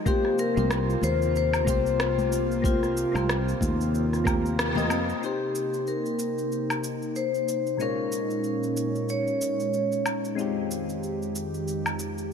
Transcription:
0.05 analog synth pad C3 A#3 F4, synth keys A#3 C4 F4 G4 C5, vibraphone G4, kick, high conga, shaker
0.25 cross-stick
0.38 vibraphone A#4, shaker
0.55 fretless electric bass C2, synth keys A#3 C4 F4 G4, high conga, shaker
0.59 synth keys C5
0.71 cross-stick, shaker
0.90 shaker
1.02 fretless electric bass D#2, vibraphone C5, high conga, shaker
1.22 shaker
1.36 vibraphone C5, shaker
1.53 low woodblock, shaker
1.65 fretless electric bass C2, synth keys A#3 C4 F4 G4, kick, high conga, shaker
1.70 synth keys C5
1.86 shaker
2.00 cross-stick, shaker
2.18 high conga, shaker
2.32 shaker
2.52 shaker
2.62 synth keys A#3 C4 F4 G4 C5, vibraphone F4, kick, high conga, shaker
2.83 cross-stick, shaker
2.97 shaker
3.12 fretless electric bass C2, synth keys A#3 C4 F4 G4, high conga, low woodblock
3.16 synth keys C5, shaker
3.29 cross-stick, shaker
3.48 shaker
3.61 fretless electric bass D#2, kick, high conga, shaker
3.81 shaker
3.95 shaker
4.13 cross-stick, shaker
4.24 synth keys A#3 C4 F4 G4 A#4, kick, high conga, low woodblock, shaker
4.46 shaker
4.59 cross-stick, shaker
4.75 synth keys A#3 C4 F4 G4 D#5, high conga, low conga, shaker
4.89 fretless electric bass F2, synth keys A#3 C4 F4 G4 D#5, low woodblock, shaker
5.09 shaker
5.20 analog synth pad C3 A#3 D#4, synth keys A#3 C4 D#4 G4, vibraphone G4, shaker
5.26 synth keys C5
5.55 shaker
5.74 shaker
5.87 vibraphone A#4, shaker
6.06 shaker
6.19 shaker
6.38 shaker
6.52 shaker
6.70 low woodblock, shaker
6.84 shaker
7.02 shaker
7.16 vibraphone C5, shaker
7.34 shaker
7.48 shaker
7.67 shaker
7.77 synth keys A#2 G#3 C#4 D#4, analog synth pad A#2 G#3 C#4 C#5, vibraphone A#4, shaker
7.82 synth keys F4 C#5
8.12 shaker
8.30 shaker
8.44 shaker
8.63 shaker
8.77 shaker
8.95 shaker
9.09 vibraphone C#5, shaker
9.27 shaker
9.41 shaker
9.60 shaker
9.73 shaker
9.92 shaker
10.06 low woodblock, shaker
10.25 shaker
10.35 analog synth pad F2 D#3 G4, synth keys G#3 C4 D#4 F4, shaker
10.41 synth keys G4
10.71 shaker
10.89 shaker
11.03 shaker
11.22 shaker
11.35 shaker
11.54 shaker
11.68 shaker
11.86 low woodblock, shaker
11.99 shaker
12.18 shaker

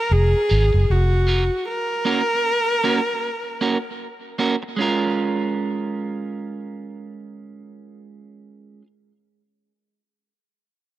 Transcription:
Already playing: viola A#4
0.11 fingered electric bass F1, viola G#4
0.49 fingered electric bass G#1, clean electric guitar A#3 C#4 F4 A#4
0.73 fingered electric bass F#1, muted clean electric guitar stroke
0.90 fingered electric bass F1, viola F#4
1.27 clean electric guitar A#3 C#4 F4 A#4
1.68 viola A#4
2.05 clean electric guitar A#3 C#4 F#4 A#4
2.84 clean electric guitar A#3 C#4 F#4 A#4
3.61 clean electric guitar A#3 C#4 F#4 A#4
4.39 clean electric guitar A#3 C#4 F#4 A#4
4.63 muted clean electric guitar stroke
4.77 clean electric guitar G#3 C#4 F4
4.82 clean electric guitar A#4

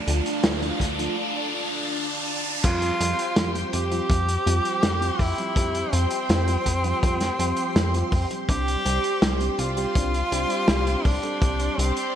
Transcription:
Already playing: string machine D4 D5 F5 A5, riser
0.07 analog synth bass D2, fm electric piano F3 A3 D4 F4, closed hi-hat
0.26 closed hi-hat
0.43 analog synth bass D2, snare, closed hi-hat
0.62 fm electric piano F3 A3 D4 F4, closed hi-hat
0.80 analog synth bass D2, kick, closed hi-hat
0.99 fm electric piano F3 A3 D4 F4, closed hi-hat
2.63 analog synth bass F2, fm electric piano F3 G3 C4 F4, tenor saxophone F4, string machine G4 C5 G5 C6, kick, closed hi-hat, crash
2.82 closed hi-hat
3.00 analog synth bass F2, fm electric piano F3 G3 C4 F4, closed hi-hat
3.19 closed hi-hat
3.36 analog synth bass F2, snare, closed hi-hat
3.55 fm electric piano F3 G3 C4 F4, closed hi-hat
3.73 analog synth bass F2, tenor saxophone G4, closed hi-hat
3.92 fm electric piano F3 G3 C4 F4, closed hi-hat
4.10 analog synth bass F2, fm electric piano F3 G3 C4 F4, kick, closed hi-hat
4.29 closed hi-hat
4.46 analog synth bass F2, fm electric piano F3 G3 C4 F4, closed hi-hat
4.65 closed hi-hat
4.83 analog synth bass F2, snare, closed hi-hat
5.01 fm electric piano F3 G3 C4 F4, closed hi-hat
5.19 analog synth bass F2, tenor saxophone E4, kick, open hi-hat
5.38 fm electric piano F3 G3 C4 G4, closed hi-hat
5.56 analog synth bass F2, fm electric piano F3 G3 C4 G4, kick, closed hi-hat
5.75 closed hi-hat
5.93 analog synth bass F2, fm electric piano F3 G3 C4 F4, tenor saxophone C4, closed hi-hat
6.11 closed hi-hat
6.29 analog synth bass F2, snare, closed hi-hat
6.48 fm electric piano F3 G3 C4 F4, closed hi-hat
6.66 analog synth bass F2, kick, closed hi-hat
6.84 fm electric piano F3 G3 C4 F4, closed hi-hat
7.03 analog synth bass F2, fm electric piano F3 G3 C4 F4, kick, closed hi-hat
7.20 snare, closed hi-hat
7.39 analog synth bass F2, fm electric piano F3 G3 C4 F4, closed hi-hat
7.57 closed hi-hat
7.76 analog synth bass F2, snare, closed hi-hat
7.94 fm electric piano F3 G3 C4 F4, closed hi-hat
8.12 analog synth bass F2, kick, open hi-hat
8.31 fm electric piano F3 G3 C4 G4, closed hi-hat
8.49 analog synth bass C2, fm electric piano G3 C4 D4 G4, tenor saxophone G4, string machine C5 D5, kick, closed hi-hat
8.68 closed hi-hat
8.85 analog synth bass C2, fm electric piano G3 C4 D4 G4, closed hi-hat
9.04 closed hi-hat
9.22 analog synth bass C2, snare, closed hi-hat
9.40 fm electric piano G3 C4 D4 G4, closed hi-hat
9.59 analog synth bass C2, tenor saxophone F4, closed hi-hat
9.77 fm electric piano G3 C4 D4 G4, closed hi-hat
9.95 analog synth bass C2, fm electric piano G3 C4 D4 G4, kick, closed hi-hat
10.14 closed hi-hat
10.32 analog synth bass C2, fm electric piano G3 C4 D4 G4, closed hi-hat
10.50 closed hi-hat
10.68 analog synth bass C2, snare, closed hi-hat
10.87 fm electric piano G3 C4 D4 G4, closed hi-hat
11.05 analog synth bass C2, tenor saxophone D4, kick, open hi-hat
11.23 fm electric piano G3 C4 D4 A4, closed hi-hat
11.42 analog synth bass C2, fm electric piano G3 C4 D4 G4, kick, closed hi-hat
11.59 closed hi-hat
11.78 analog synth bass C2, fm electric piano G3 C4 D4 G4, tenor saxophone C4, closed hi-hat
11.97 closed hi-hat

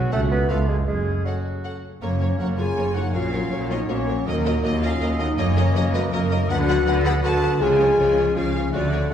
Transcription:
Already playing: harp C#3 G#4, bassoon F#3, clarinet F#4, oboe F#4
0.00 harp A3 C#4
0.08 harp F#4, french horn section F#4 A4, clarinet F#4, violin section F#5
0.12 cello section C#2, double bass section C#2, bassoon A3, oboe A4, viola section A4, violin section C#5
0.31 harp C#3, bassoon B3, oboe B4
0.36 harp B3
0.41 harp C#4
0.45 harp F4, clarinet F4
0.49 cello section C#2, double bass section C#2, bassoon A3, oboe A4, french horn section B4, viola section B4, violin section C#5 F5
0.69 harp F#2, bassoon G#3, oboe G#4
0.74 harp A3
0.78 harp C#4
0.83 harp F#4
0.87 double bass section F#1, cello section F#2, bassoon G#3, clarinet C#4, oboe G#4
1.25 bassoon F#3, french horn section F#4 A4, oboe F#4, viola section A4, violin section C#5 F#5
1.63 french horn section F#4 A4, viola section A4, violin section C#5 F#5
2.01 double bass section F#1, cello section F#2, harp F#2, viola section A#3 A#4, bassoon A#3, clarinet A#3, french horn section C#4, flute C#5, violin section C#5, oboe C#5
2.11 harp C#3
2.20 harp F#3, viola section A#3 A#4, violin section C#5
2.30 harp C#4
2.38 double bass section F#1, cello section F#2, viola section A#3 A#4, clarinet C#4, french horn section F#4, harp A#4, violin section C#5 F#5, flute F#5
2.49 harp F#4
2.57 viola section A#3 A#4, clarinet F4, french horn section G#4, harp C#5, violin section C#5 G#5, flute G#5
2.67 harp A#5
2.76 double bass section F#1, cello section F#2, viola section A#3 A#4, harp C#5, violin section C#5
2.85 harp F#4
2.94 viola section A#3 A#4, harp C#4, clarinet D#4, french horn section F#4, violin section C#5 F#5, flute F#5
3.04 harp F#3
3.14 double bass section A#1, harp A#2, cello section A#2, bassoon F#3, viola section F#3 A#4, clarinet C#4, french horn section F4, violin section C#5 F5, flute F5
3.24 harp A#3
3.32 harp F#3, viola section F#3 A#4, violin section C#5
3.42 harp C#4
3.51 double bass section A#1, cello section A#2, viola section F#3 A#4, harp A#4, violin section C#5
3.61 harp F#4
3.69 viola section F#3 A#4, clarinet B3, french horn section D#4, harp C#5, violin section C#5 D#5, flute D#5
3.79 harp A#5
3.88 double bass section A#1, cello section A#2, viola section F#3 A#4, clarinet A#3, french horn section C#4, harp C#5, violin section C#5, flute D#5
3.94 harp F#4, flute C#5
4.07 viola section F#3 A#4, harp C#4, violin section C#5
4.17 harp F#3
4.26 cello section D#2, double bass section D#2, harp D#3, viola section F#3 A#4, clarinet F#3, french horn section A#3, violin section A#4 D#5, flute A#4, oboe D#5
4.35 harp F#3
4.44 viola section F#3 A#4, harp D#4, violin section D#5
4.54 harp A#4
4.63 cello section D#2, double bass section D#2, viola section F#3 A#4, clarinet A#3, french horn section D#4, harp F#4, violin section D#5, flute D#5
4.81 viola section F#3 A#4, clarinet C#4, french horn section F4, violin section D#5 F5, flute F5, harp A#5
4.91 harp F#5
5.00 cello section D#2, double bass section D#2, viola section F#3 A#4, violin section D#5, harp A#5
5.10 harp D#5
5.19 viola section F#3 A#4, clarinet B3, french horn section D#4, harp A#4, violin section D#5, flute D#5
5.29 harp D#4
5.38 double bass section F#1, cello section F#2, harp F#2, viola section F#3 A#4, clarinet A#3, bassoon A#3, french horn section C#4, violin section C#5 D#5, flute C#5
5.47 harp D#3
5.56 harp F#3, viola section F#3 A#4, flute D#5, violin section D#5
5.61 flute C#5
5.65 harp D#4
5.73 double bass section F#1, cello section F#2, viola section F#3 A#4, harp A#4, flute B4, violin section D#5
5.78 flute C#5
5.84 harp F#4
5.93 viola section F#3 A#4, clarinet G#3, french horn section B3, violin section B4 D#5, flute B4, harp D#5
6.02 harp A#5
6.11 double bass section F#1, cello section F#2, clarinet F#3, viola section F#3 A#4, french horn section A#3, flute A#4, violin section A#4 D#5, harp D#5
6.21 harp F#4
6.31 viola section F#3 A#4, harp D#4, violin section D#5
6.40 harp F#3
6.48 double bass section D2, cello section D3, harp D3, viola section F#3 B4, bassoon B3, clarinet D4, french horn section F#4, flute F#5, oboe F#5, violin section F#5
6.59 harp D4
6.68 harp F#3, viola section F#3 B4, violin section F#5
6.86 double bass section D2, cello section D3, viola section F#3 B4, harp B4, violin section F#5
6.96 harp F#4
7.04 viola section F#3 B4, clarinet G#4, french horn section B4, harp F#5, violin section F#5 B5, flute B5
7.15 harp B5
7.22 double bass section D2, cello section D3, viola section F#3 B4, clarinet F#4, french horn section A4, violin section F#5 A5, harp F#5, flute A5 B5
7.33 harp F#4
7.42 harp F#3, viola section F#3 B4, violin section F#5
7.52 harp D4
7.60 double bass section C#2, harp C#3, cello section C#3, viola section F3 G#4, bassoon G#3, clarinet F4, french horn section G#4, violin section C#5 G#5, oboe F5, flute G#5
7.71 harp F3
7.79 viola section F3 G#4, harp C#4, violin section C#5
7.97 double bass section C#2, cello section C#3, viola section F3 G#4, harp F4, violin section C#5
8.08 harp C#5
8.17 viola section F3 G#4, violin section C#5, harp G#5
8.26 harp F5
8.35 double bass section C#2, cello section C#3, viola section F3 G#4, clarinet C#4, french horn section F4, violin section C#5 F5, flute F5, harp G#5
8.45 harp C#5
8.53 viola section F3 G#4, harp G#4, violin section C#5
8.64 harp C#4
8.72 double bass section D2, cello section D3, harp D3, clarinet A3, bassoon A3, viola section A3 F#4, french horn section D4, violin section C#5 D5, flute D5, oboe F#5
8.83 harp A3
8.92 viola section A3 F#4, harp C#4, violin section C#5
9.02 harp F#4
9.10 double bass section D2, cello section D3, bassoon A3, clarinet D4, french horn section F#4, viola section F#4, oboe F#5, flute F#5

